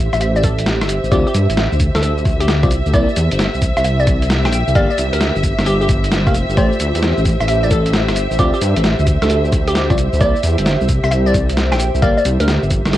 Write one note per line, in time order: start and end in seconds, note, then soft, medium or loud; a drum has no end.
0.00 2.92 G4 medium
0.00 4.75 C5 medium
0.00 4.75 E5 medium
0.00 12.97 E5 medium
0.13 0.83 A1 medium
0.13 0.18 E5 medium
0.13 cross-stick medium
0.13 shaker soft
0.21 0.30 E5 medium
0.21 closed hi-hat medium
0.21 shaker soft
0.36 0.42 D5 loud
0.36 shaker soft
0.43 0.64 A4 medium
0.43 kick loud
0.43 cross-stick soft
0.43 closed hi-hat loud
0.43 shaker medium
0.58 closed hi-hat medium
0.58 shaker soft
0.66 snare loud
0.66 shaker soft
0.81 1.00 G1 loud
0.81 cross-stick medium
0.81 snare medium
0.81 closed hi-hat medium
0.81 shaker soft
0.89 closed hi-hat loud
0.89 shaker medium
1.04 1.11 A1 loud
1.04 shaker soft
1.12 1.25 D2 loud
1.12 1.27 C4 loud
1.12 1.27 F4 medium
1.12 1.21 G4 medium
1.12 1.27 D5 loud
1.12 kick loud
1.12 closed hi-hat medium
1.12 shaker soft
1.27 1.32 G4 medium
1.27 shaker soft
1.34 1.47 G2 medium
1.34 closed hi-hat loud
1.34 shaker medium
1.49 1.68 A1 medium
1.49 closed hi-hat medium
1.49 shaker soft
1.57 snare loud
1.57 shaker soft
1.72 1.91 D2 medium
1.72 shaker soft
1.80 kick medium
1.80 closed hi-hat loud
1.80 shaker medium
1.95 2.65 D2 medium
1.95 2.00 A4 medium
1.95 cross-stick medium
1.95 snare medium
1.95 shaker soft
2.03 2.12 A4 medium
2.03 closed hi-hat medium
2.03 shaker soft
2.18 shaker soft
2.25 kick loud
2.25 cross-stick soft
2.25 closed hi-hat loud
2.25 shaker medium
2.40 2.45 G4 medium
2.40 closed hi-hat medium
2.40 shaker soft
2.48 2.58 G4 medium
2.48 snare loud
2.48 shaker soft
2.63 2.82 C2 loud
2.63 2.71 C4 medium
2.63 2.71 F4 medium
2.63 2.71 D5 medium
2.63 kick loud
2.63 cross-stick medium
2.63 closed hi-hat medium
2.63 shaker soft
2.71 closed hi-hat loud
2.71 shaker medium
2.86 2.93 D2 loud
2.86 shaker soft
2.93 3.06 C2 loud
2.93 3.08 A#3 loud
2.93 3.08 E4 medium
2.93 12.77 G4 medium
2.93 3.08 D5 loud
2.93 3.14 D5 medium
2.93 kick loud
2.93 closed hi-hat medium
2.93 shaker soft
3.09 shaker soft
3.16 3.29 E2 loud
3.16 closed hi-hat loud
3.16 shaker medium
3.31 3.50 G1 medium
3.31 closed hi-hat medium
3.31 shaker soft
3.39 snare loud
3.39 shaker soft
3.54 3.73 C2 medium
3.54 shaker soft
3.62 kick medium
3.62 closed hi-hat medium
3.62 shaker medium
3.77 4.47 C2 medium
3.77 3.82 E5 medium
3.77 cross-stick medium
3.77 shaker soft
3.84 3.94 E5 medium
3.84 closed hi-hat medium
3.84 shaker soft
3.99 4.06 D5 medium
3.99 shaker soft
4.07 kick loud
4.07 cross-stick soft
4.07 closed hi-hat loud
4.07 shaker medium
4.22 closed hi-hat medium
4.22 shaker soft
4.30 snare loud
4.30 shaker soft
4.45 4.63 A#1 loud
4.45 4.74 G5 loud
4.45 cross-stick medium
4.45 snare medium
4.45 closed hi-hat medium
4.45 shaker soft
4.52 closed hi-hat medium
4.52 shaker medium
4.68 4.74 C2 loud
4.68 shaker soft
4.75 4.88 G1 loud
4.75 4.90 A#3 medium
4.75 4.90 G4 medium
4.75 4.85 D5 medium
4.75 4.90 F5 loud
4.75 kick loud
4.75 closed hi-hat medium
4.75 shaker soft
4.90 4.95 D5 medium
4.90 shaker soft
4.98 5.11 C2 medium
4.98 closed hi-hat loud
4.98 shaker medium
5.05 12.77 C5 medium
5.13 5.32 D2 medium
5.13 5.31 A#4 medium
5.13 closed hi-hat medium
5.13 shaker soft
5.21 snare loud
5.21 shaker soft
5.36 5.54 G1 medium
5.36 shaker soft
5.44 kick medium
5.44 closed hi-hat medium
5.44 shaker medium
5.58 6.28 G1 medium
5.58 cross-stick medium
5.58 snare medium
5.58 shaker soft
5.66 5.76 G4 medium
5.66 closed hi-hat medium
5.66 shaker soft
5.81 5.86 G4 medium
5.81 shaker soft
5.89 kick loud
5.89 cross-stick soft
5.89 closed hi-hat loud
5.89 shaker medium
6.04 closed hi-hat medium
6.04 shaker soft
6.12 snare loud
6.12 shaker soft
6.27 6.45 F1 loud
6.27 6.34 A#3 medium
6.27 6.34 G4 medium
6.27 6.34 F5 medium
6.27 kick loud
6.27 cross-stick medium
6.27 closed hi-hat medium
6.27 shaker soft
6.34 closed hi-hat medium
6.34 shaker medium
6.49 6.56 G1 loud
6.49 shaker soft
6.57 6.70 A1 loud
6.57 6.72 A3 medium
6.57 6.72 G4 medium
6.57 6.72 C5 loud
6.57 6.77 D5 medium
6.57 kick loud
6.57 closed hi-hat medium
6.57 shaker soft
6.72 shaker soft
6.77 6.93 D2 loud
6.77 12.77 E5 medium
6.77 closed hi-hat loud
6.77 shaker medium
6.95 7.13 E2 loud
6.95 closed hi-hat medium
6.95 shaker soft
7.03 snare loud
7.03 shaker soft
7.18 7.36 A1 medium
7.18 shaker soft
7.25 kick medium
7.25 closed hi-hat medium
7.25 shaker medium
7.40 8.10 A1 medium
7.40 7.45 E5 medium
7.40 cross-stick medium
7.40 shaker soft
7.48 7.58 E5 medium
7.48 closed hi-hat medium
7.48 shaker soft
7.63 7.69 D5 loud
7.63 shaker soft
7.71 7.91 A4 medium
7.71 kick loud
7.71 cross-stick soft
7.71 closed hi-hat loud
7.71 shaker medium
7.86 closed hi-hat medium
7.86 shaker soft
7.93 snare loud
7.93 shaker soft
8.08 8.27 G1 loud
8.08 cross-stick medium
8.08 snare medium
8.08 closed hi-hat medium
8.08 shaker soft
8.16 closed hi-hat medium
8.16 shaker medium
8.31 8.38 A1 loud
8.31 shaker soft
8.39 8.52 D2 loud
8.39 8.54 C4 medium
8.39 8.54 F4 medium
8.39 8.49 G4 medium
8.39 8.54 D5 loud
8.39 kick loud
8.39 closed hi-hat medium
8.39 shaker soft
8.54 8.59 G4 medium
8.54 shaker soft
8.62 8.75 G2 medium
8.62 closed hi-hat loud
8.62 shaker medium
8.77 8.95 A1 medium
8.77 closed hi-hat medium
8.77 shaker soft
8.84 snare loud
8.84 shaker soft
8.99 9.18 D2 medium
8.99 shaker soft
9.07 kick medium
9.07 closed hi-hat medium
9.07 shaker medium
9.22 9.92 D2 medium
9.22 9.27 A4 medium
9.22 cross-stick medium
9.22 snare medium
9.22 shaker soft
9.30 9.39 A4 medium
9.30 closed hi-hat medium
9.30 shaker soft
9.45 shaker soft
9.52 kick loud
9.52 cross-stick soft
9.52 closed hi-hat loud
9.52 shaker medium
9.68 9.73 G4 medium
9.68 closed hi-hat medium
9.68 shaker soft
9.75 9.85 G4 medium
9.75 snare loud
9.75 shaker soft
9.90 10.09 C2 loud
9.90 9.98 C4 medium
9.90 9.98 F4 medium
9.90 9.98 D5 medium
9.90 kick loud
9.90 cross-stick medium
9.90 closed hi-hat medium
9.90 shaker soft
9.98 closed hi-hat medium
9.98 shaker medium
10.13 10.20 D2 loud
10.13 shaker soft
10.21 10.34 C2 loud
10.21 10.36 A#3 medium
10.21 10.36 E4 medium
10.21 10.36 D5 loud
10.21 10.41 D5 medium
10.21 kick loud
10.21 closed hi-hat medium
10.21 shaker soft
10.36 shaker soft
10.43 10.56 E2 medium
10.43 closed hi-hat loud
10.43 shaker medium
10.58 10.77 G1 medium
10.58 closed hi-hat medium
10.58 shaker soft
10.66 snare loud
10.66 shaker soft
10.81 11.00 C2 medium
10.81 shaker soft
10.89 kick medium
10.89 closed hi-hat loud
10.89 shaker medium
11.04 11.74 C2 medium
11.04 11.09 E5 medium
11.04 cross-stick medium
11.04 shaker soft
11.11 11.21 E5 medium
11.11 closed hi-hat medium
11.11 shaker soft
11.26 11.33 D5 loud
11.26 shaker soft
11.34 kick loud
11.34 cross-stick soft
11.34 closed hi-hat loud
11.34 shaker medium
11.50 closed hi-hat medium
11.50 shaker soft
11.57 snare loud
11.57 shaker soft
11.72 11.91 A#1 loud
11.72 12.01 G5 medium
11.72 cross-stick medium
11.72 snare medium
11.72 closed hi-hat medium
11.72 shaker soft
11.80 closed hi-hat loud
11.80 shaker medium
11.95 12.01 C2 loud
11.95 shaker soft
12.02 12.15 G1 loud
12.02 12.17 A#3 medium
12.02 12.97 F4 medium
12.02 12.17 G4 medium
12.02 12.12 D5 medium
12.02 12.17 F5 loud
12.02 kick loud
12.02 closed hi-hat medium
12.02 shaker soft
12.18 12.23 D5 medium
12.18 shaker soft
12.24 12.38 C2 medium
12.24 12.97 A#4 medium
12.24 closed hi-hat loud
12.24 shaker medium
12.40 12.59 D2 medium
12.40 12.58 A#4 loud
12.40 closed hi-hat medium
12.40 shaker soft
12.48 snare loud
12.48 shaker soft
12.63 12.82 G1 medium
12.63 shaker soft
12.71 kick medium
12.71 closed hi-hat loud
12.71 shaker medium
12.86 12.97 G1 medium
12.86 cross-stick medium
12.86 snare medium
12.86 shaker soft
12.93 12.97 G4 medium
12.93 snare medium
12.93 closed hi-hat medium
12.93 shaker soft